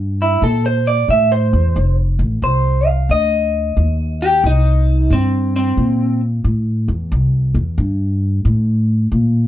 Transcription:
Already playing: G2
0.22 E4
0.42 A#2 A4
0.66 C5
0.87 D5
1.08 A2 E5
1.32 C5
1.53 E2
1.76 F1
2.19 A1
2.42 C2 C5
2.87 F5
3.09 D2 D#5
3.77 D#2
4.22 G4
4.44 C2 D#4
5.10 G2 C4
5.56 C4
5.77 A#2
6.44 A2
6.88 E2
7.12 C2
7.54 E2
7.78 G2
8.45 A2
9.12 A#2

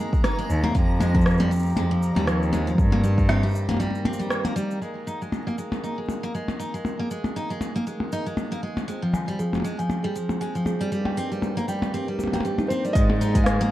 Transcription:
Already playing: D#3 A#3 G#4 A#5
0.00 G#3
0.13 kick, shaker
0.24 D#4, cross-stick, percussion blips, shaker
0.39 G#3, shaker
0.50 D#2, shaker
0.64 A#3, percussion blips
0.75 F2 F3 C4 G4, kick, shaker
1.00 G#3, percussion blips, shaker
1.14 F3, kick
1.21 shaker
1.26 cross-stick, shaker
1.30 shaker
1.34 shaker
1.37 G3, percussion blips, shaker
1.41 shaker
1.51 F3, shaker
1.56 shaker
1.59 shaker
1.63 shaker
1.66 shaker
1.69 shaker
1.72 shaker
1.75 F2 G#3, percussion blips, shaker
1.77 shaker
1.91 F3
2.03 shaker
2.16 D#2 G3, percussion blips, shaker
2.27 F3, cross-stick, shaker
2.42 shaker
2.53 G#3, percussion blips, shaker
2.67 F3, shaker
2.77 G2 D#3 A#3, kick, shaker
2.92 A#3, percussion blips
3.03 G3, shaker
3.18 kick, shaker
3.29 C4, cross-stick, percussion blips, shaker
3.43 G3, shaker
3.46 shaker
3.49 shaker
3.51 shaker
3.53 shaker
3.55 shaker
3.69 A#3, percussion blips, shaker
3.71 percussion blips
3.74 percussion blips
3.77 percussion blips
3.80 G3, percussion blips, shaker
3.83 percussion blips
3.87 percussion blips
3.91 percussion blips
3.95 shaker
4.05 C4, percussion blips
4.13 shaker
4.19 G3, shaker
4.30 cross-stick, shaker
4.45 A#3, percussion blips, shaker
4.56 G3, shaker
4.71 shaker
4.81 D#3 G#3 A#3 G#4, shaker
5.07 D#4, shaker
5.22 G#3, shaker
5.32 percussion blips, shaker
5.47 A#3, shaker
5.58 G#3, shaker
5.72 percussion blips, shaker
5.83 D#4, shaker
5.98 G#3
6.09 percussion blips, shaker
6.23 A#3, shaker
6.35 G#3, shaker
6.48 percussion blips, shaker
6.59 D#4, shaker
6.74 G#3, shaker
6.85 percussion blips, shaker
6.99 A#3
7.11 G#3, shaker
7.24 percussion blips, shaker
7.36 D#4, shaker
7.50 G#3, shaker
7.61 percussion blips, shaker
7.76 A#3, shaker
7.87 G#3, shaker
8.00 percussion blips
8.12 D#4, shaker
8.26 G#3, shaker
8.37 percussion blips, shaker
8.52 A#3, shaker
8.63 G#3
8.77 percussion blips, shaker
8.88 F3 G#3 C4, shaker
9.02 F3
9.14 G#5, percussion blips, shaker
9.28 G3, shaker
9.39 F3 G#4, shaker
9.53 percussion blips, shaker
9.55 percussion blips
9.57 percussion blips
9.60 percussion blips
9.62 G#3, percussion blips, shaker
9.79 F3 G#5, shaker
9.90 percussion blips, shaker
10.04 G3 G#4
10.16 F3, shaker
10.29 percussion blips, shaker
10.41 G#3 G#5, shaker
10.55 F3, shaker
10.66 G#4, percussion blips, shaker
10.81 G3, shaker
10.92 G2 D#3 G3 A#3 G4, shaker
11.05 G5, percussion blips
11.17 C4, shaker
11.31 G3 G4, shaker
11.42 percussion blips, shaker
11.57 A#3, shaker
11.68 G3 G5, shaker
11.82 percussion blips, shaker
11.94 C4 G4, shaker
12.08 G3
12.19 G4, percussion blips, shaker
12.24 percussion blips
12.28 percussion blips
12.33 A#3 G5, percussion blips, shaker
12.36 percussion blips
12.40 percussion blips
12.45 G3 G4, shaker
12.58 D#4, percussion blips, shaker
12.68 C4 C5, shaker
12.85 G3 D5, shaker
12.93 G#2 D#3 G#3 A#3 G#4 D#5, kick, open hi-hat, shaker
13.10 G#4, percussion blips
13.21 D#4, shaker
13.35 G#3, kick, open hi-hat, shaker
13.44 F5 G#5, cross-stick, open hi-hat, percussion blips, shaker
13.61 A#3, shaker

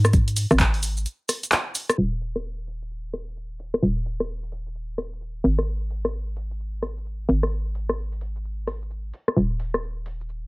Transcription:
Already playing: G#2
0.05 cross-stick, shaker
0.13 kick, closed hi-hat, shaker
0.28 closed hi-hat
0.36 open hi-hat, shaker
0.51 G#1, cross-stick, shaker
0.60 kick, clap, closed hi-hat, shaker
0.74 open hi-hat
0.83 open hi-hat, shaker
0.97 shaker
1.06 closed hi-hat, shaker
1.29 cross-stick, open hi-hat, shaker
1.43 closed hi-hat, shaker
1.52 clap, closed hi-hat, shaker
1.75 open hi-hat, shaker
1.89 cross-stick, closed hi-hat, shaker
1.98 D#1
2.21 open hi-hat, shaker
2.36 cross-stick
2.44 shaker
2.67 open hi-hat, shaker
2.82 shaker
2.90 shaker
3.13 cross-stick, open hi-hat, shaker
3.28 shaker
3.36 shaker
3.60 open hi-hat, shaker
3.74 cross-stick, shaker
3.82 D#1, shaker
4.06 open hi-hat, shaker
4.20 cross-stick, shaker
4.29 shaker
4.43 open hi-hat
4.52 open hi-hat, shaker
4.66 shaker
4.75 shaker
4.98 cross-stick, open hi-hat, shaker
5.12 shaker
5.21 shaker
5.44 G#1, open hi-hat, shaker
5.58 cross-stick, shaker
5.67 shaker
5.90 open hi-hat, shaker
6.05 cross-stick, shaker
6.13 shaker
6.36 open hi-hat, shaker
6.51 shaker
6.59 shaker
6.82 cross-stick, open hi-hat, shaker
6.97 shaker
7.06 shaker
7.29 G#1, open hi-hat, shaker
7.43 cross-stick, shaker
7.52 shaker
7.75 open hi-hat, shaker
7.89 cross-stick, shaker
7.98 shaker
8.12 open hi-hat
8.21 open hi-hat, shaker
8.36 shaker
8.44 shaker
8.67 cross-stick, open hi-hat, shaker
8.82 shaker
8.90 shaker
9.13 open hi-hat, shaker
9.28 cross-stick, shaker
9.37 D#1, shaker
9.60 open hi-hat, shaker
9.74 cross-stick, shaker
9.83 shaker
10.06 open hi-hat, shaker
10.20 shaker
10.29 shaker

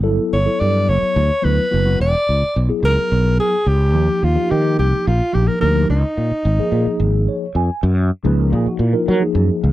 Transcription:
0.03 G1 F#3 B3 E4 A4
0.33 G1 C#5
0.45 F#3 B3 E4 A4
0.60 G2 D5
0.89 F#1 C#5
1.16 D2
1.42 D2 F#3 B3 E4 B4
1.71 F#1 F#3 B3 E4 F#4
1.85 F#3 B3 E4 F#4
2.00 E1 D5
2.29 C#2
2.43 muted fretless electric bass stroke
2.56 B1
2.69 F#3 B3 E4 G#4, muted fretless electric bass stroke
2.83 C#2 A#4
2.97 muted fretless electric bass stroke
3.12 B1
3.40 G#4
3.66 C#2 G4
3.94 D#2 F3 A#3 D#4 G4
4.23 D#2 F4
4.35 F3 A#3 D#4 G4
4.50 D#3 G4
4.79 C2 G4
4.93 muted fretless electric bass stroke
5.07 A#1 F4
5.33 A#1 F3 A#3 D#4 G4
5.48 A#4
5.60 D2 F3 A#3 D#4 G4 A#4
5.74 F3 A#3 D#4 G4
5.89 C#2 D#4
6.17 A#2
6.31 muted fretless electric bass stroke
6.45 G#1
6.59 F3 A#3 D#4 G#4, muted fretless electric bass stroke
6.72 A#2
6.86 muted fretless electric bass stroke
7.00 G#1
7.28 C#5
7.55 F2 G#5
7.83 F#2
8.24 C#2 F3 A#3 D#4 G#4 B4
8.40 A#4
8.53 A#2 G#4
8.66 F#4, muted fretless electric bass stroke
8.79 A#2 E4
8.93 F3 A#3 D#4 F4 A#4
9.08 F#3 A#4
9.20 F3 A#3 D#4 G#4
9.35 F#2
9.63 C#2

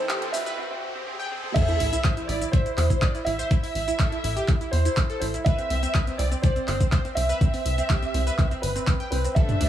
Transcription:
Already playing: E3 C4 A4 C5, riser
0.09 C2 G4, clap, closed hi-hat, shaker
0.22 C4, closed hi-hat
0.32 C2 E3 C4 B4 E5, open hi-hat, shaker
0.46 B4, closed hi-hat, shaker
0.58 C4
0.71 C4
0.95 C4
1.07 C4
1.20 G5
1.31 C4
1.44 C4
1.54 A1 C5 E5, kick, closed hi-hat, crash, sub drop, shaker
1.68 E4, closed hi-hat, shaker
1.80 A1 E4, open hi-hat
1.93 E4, closed hi-hat, shaker
2.04 A1 C5, kick, clap, closed hi-hat, shaker
2.17 E4, closed hi-hat, shaker
2.27 A1 E4 D5, open hi-hat
2.41 E4, closed hi-hat, shaker
2.52 A1 C5 E5, kick, closed hi-hat, shaker
2.66 E4, closed hi-hat, shaker
2.77 E2 E4, clap, open hi-hat
2.90 E4, kick, closed hi-hat, shaker
3.02 A1 D5, kick, clap, closed hi-hat, shaker
3.15 E4, closed hi-hat, shaker
3.25 A1 E4 E5, open hi-hat
3.39 C5, closed hi-hat, shaker
3.51 A1 E4, kick, closed hi-hat, shaker
3.63 E4, open hi-hat, shaker
3.75 A1, open hi-hat
3.88 E4, closed hi-hat, shaker
3.99 A1 A4, kick, clap, closed hi-hat, shaker
4.12 E4, closed hi-hat, shaker
4.24 A1 E4, open hi-hat
4.37 G4, closed hi-hat, shaker
4.48 A1 E4, kick, clap, closed hi-hat, shaker
4.61 E4, closed hi-hat, shaker
4.71 E2 C5, open hi-hat
4.85 E4, closed hi-hat, shaker
4.97 A1 E4, kick, clap, closed hi-hat, shaker
5.10 A4, closed hi-hat, shaker
5.20 A1 E4 C5, open hi-hat
5.34 E4, closed hi-hat, shaker
5.44 C2 B4 E5, kick, closed hi-hat, shaker
5.58 C4, closed hi-hat, shaker
5.70 C2 C4, open hi-hat
5.83 C4, closed hi-hat, shaker
5.94 C2 B4, kick, clap, closed hi-hat, shaker
6.07 C4, closed hi-hat, shaker
6.18 C2 C4 D5, open hi-hat
6.32 C4, closed hi-hat, shaker
6.42 C2 C5 D5, kick, closed hi-hat, shaker
6.56 C4, closed hi-hat, shaker
6.68 G1 C4, clap, open hi-hat
6.80 C4, kick, closed hi-hat, shaker
6.92 C2 C5, kick, clap, closed hi-hat, shaker
7.05 C4, closed hi-hat, shaker
7.15 C2 C4 E5, open hi-hat
7.29 B4, closed hi-hat, shaker
7.41 C2 C4, kick, closed hi-hat, shaker
7.54 C4, open hi-hat, shaker
7.66 C2, open hi-hat
7.78 C4, closed hi-hat, shaker
7.90 C2 G4, kick, clap, closed hi-hat, shaker
8.02 C4, closed hi-hat, shaker
8.14 C2 C4, open hi-hat
8.27 B4, closed hi-hat, shaker
8.38 C2 C4, kick, clap, closed hi-hat, shaker
8.51 C4, closed hi-hat, shaker
8.62 G1 B4, open hi-hat
8.76 C4, closed hi-hat, shaker
8.87 C2 C4, kick, clap, closed hi-hat, shaker
9.00 G5, closed hi-hat, shaker
9.11 C2 C4 B4, open hi-hat
9.24 C4, closed hi-hat, shaker
9.35 D2 G3 D4 A4 C5 E5, kick, closed hi-hat, shaker
9.49 D4, closed hi-hat, mid tom, shaker
9.61 D2 D4, open hi-hat

